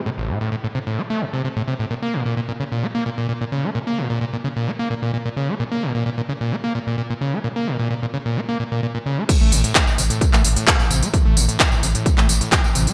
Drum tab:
CC |----------------|----------------|----------------|----------------|
HH |----------------|----------------|----------------|----------------|
TB |----------------|----------------|----------------|----------------|
CP |----------------|----------------|----------------|----------------|
BD |----------------|----------------|----------------|----------------|

CC |----------------|x---------------|----------------|
HH |----------------|x-oxx-oxx-oxx-ox|x-oxx-oxx-oxx-ox|
TB |----------------|x-xxxxxxxxxxxxxx|x-xxxxxxxxxxxxxx|
CP |----------------|----x----x--x---|----x----x--x---|
BD |----------------|o---o---o---o---|o---o---o---o---|